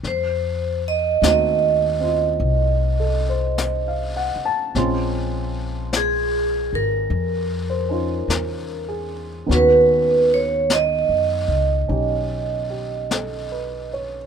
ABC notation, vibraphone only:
X:1
M:4/4
L:1/8
Q:"Swing" 1/4=50
K:Ebmix
V:1 name="Vibraphone"
c e e4- e z | z2 A B4 z | =B d e4- e z |]